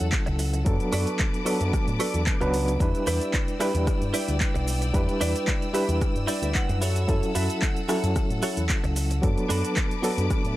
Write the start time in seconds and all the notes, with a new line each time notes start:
Already playing: F#3 C#4 E4 A4 F#5 E6
0.01 E2
0.12 kick, clap, closed hi-hat, cabasa
0.26 C#2, muted clean electric guitar stroke, closed hi-hat, cabasa
0.39 muted clean electric guitar stroke, open hi-hat, cabasa
0.53 muted clean electric guitar stroke, closed hi-hat, cabasa
0.65 F#2 F#3 B3 D4 A4 B4 A5 D6, kick, closed hi-hat, cabasa
0.80 closed hi-hat, cabasa
0.93 F#2 F#4 A4 B4 D5, open hi-hat, cabasa
1.07 closed hi-hat, cabasa
1.19 kick, clap, closed hi-hat, cabasa
1.34 closed hi-hat, cabasa
1.45 F#3 B3 D4 F#4 A4 B4 D5, open hi-hat, cabasa
1.61 F#2, closed hi-hat, cabasa
1.73 muted clean electric guitar stroke, kick, cross-stick, closed hi-hat, cabasa
1.88 A2, closed hi-hat, cabasa
2.00 F#4 A4 B4 D5, open hi-hat, cabasa
2.14 E2, closed hi-hat, cabasa
2.26 kick, clap, closed hi-hat, cabasa
2.41 C#2 F#3 B3 D4 B4, muted clean electric guitar stroke, closed hi-hat, cabasa
2.53 muted clean electric guitar stroke, open hi-hat, cabasa
2.68 muted clean electric guitar stroke, closed hi-hat, cabasa
2.80 E2 G3 D4 E4 B4 D5 G5 E6, kick, closed hi-hat, cabasa
2.95 closed hi-hat, cabasa
3.07 E2 E4 G4 B4 D5, open hi-hat, cabasa
3.21 closed hi-hat, cabasa
3.33 kick, clap, closed hi-hat, cabasa
3.48 closed hi-hat, cabasa
3.59 G3 D4 E4 G4 B4 D5, cross-stick, open hi-hat, cabasa
3.75 E2, closed hi-hat, cabasa
3.87 muted clean electric guitar stroke, muted picked electric bass stroke, kick, cross-stick, closed hi-hat, cabasa
4.02 G2, closed hi-hat, cabasa
4.14 E4 G4 B4 D5, open hi-hat, cabasa
4.28 D2, closed hi-hat, cabasa
4.40 kick, clap, closed hi-hat, cabasa
4.54 B1, muted clean electric guitar stroke, closed hi-hat, cabasa
4.67 muted clean electric guitar stroke, open hi-hat, cabasa
4.81 muted clean electric guitar stroke, closed hi-hat, cabasa
4.93 E2 G3 D4 E4 B4, kick, closed hi-hat, cabasa
5.09 closed hi-hat, cabasa
5.21 E2 E4 G4 B4 D5, open hi-hat, cabasa
5.36 closed hi-hat, cabasa
5.47 kick, clap, closed hi-hat, cabasa
5.62 closed hi-hat, cabasa
5.74 G3 D4 E4 G4 B4 E5, open hi-hat, cabasa
5.89 E2, closed hi-hat, cabasa
6.01 muted clean electric guitar stroke, kick, cross-stick, closed hi-hat, cabasa
6.16 G2, closed hi-hat, cabasa
6.27 E4 G4 B4 D5, open hi-hat, cabasa
6.42 D2 E5, closed hi-hat, cabasa
6.55 F#5, kick, clap, closed hi-hat, cabasa
6.69 F#2, muted clean electric guitar stroke, closed hi-hat, cabasa
6.81 E4 F#4 A4 C#5 F#5, open hi-hat, cabasa
6.96 closed hi-hat, cabasa
7.07 F#2 F#3 C#4 E4 A4, kick, closed hi-hat, cabasa
7.23 closed hi-hat, cabasa
7.35 F#2 E4 F#4 A4 E5, open hi-hat, cabasa
7.50 closed hi-hat, cabasa
7.62 kick, clap, closed hi-hat, cabasa
7.77 closed hi-hat, cabasa
7.88 F#3 C#4 E4 F#4 A4 C#5, cross-stick, open hi-hat, cabasa
8.04 F#2, closed hi-hat, cabasa
8.15 muted clean electric guitar stroke, muted picked electric bass stroke, kick, cross-stick, closed hi-hat, cabasa
8.30 A2, closed hi-hat, cabasa
8.42 E4 F#4 A4 C#5, open hi-hat, cabasa
8.57 E2, closed hi-hat, cabasa
8.69 kick, clap, closed hi-hat, cabasa
8.84 C#2, muted clean electric guitar stroke, closed hi-hat, cabasa
8.96 muted clean electric guitar stroke, open hi-hat, cabasa
9.10 muted clean electric guitar stroke, closed hi-hat, cabasa
9.22 F#2 F#3 B3 D4 A4 B4 A5 D6, kick, closed hi-hat, cabasa
9.38 closed hi-hat, cabasa
9.49 F#2 D4 F#4 A4 B4, open hi-hat, cabasa
9.64 closed hi-hat, cabasa
9.76 kick, clap, closed hi-hat, cabasa
9.91 closed hi-hat, cabasa
10.02 F#3 B3 D4 F#4 A4 B4, open hi-hat, cabasa
10.18 F#2, closed hi-hat, cabasa
10.30 muted clean electric guitar stroke, kick, cross-stick, closed hi-hat, cabasa
10.45 A2, closed hi-hat, cabasa